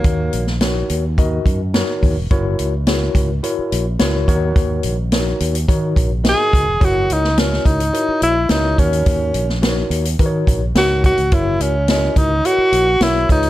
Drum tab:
HH |x-x-x-x-x-x-x-o-|x-x-x-x-x-x-x-x-|x-x-x-xxx-x-x-x-|x-x-x-xxx-x-x-xx|
SD |---oo-------o---|----o-------o---|----o-------o---|---ooo------o---|
BD |o-------o-o---o-|o-----o-------o-|o-------o-o---o-|o-----o-------o-|

HH |x-x-x-xxx-x-x-xx|x-x-x-x-x-x-x-xx|
SD |---oo-------o---|----o-------o---|
BD |o-------o-o---o-|o-----o-------o-|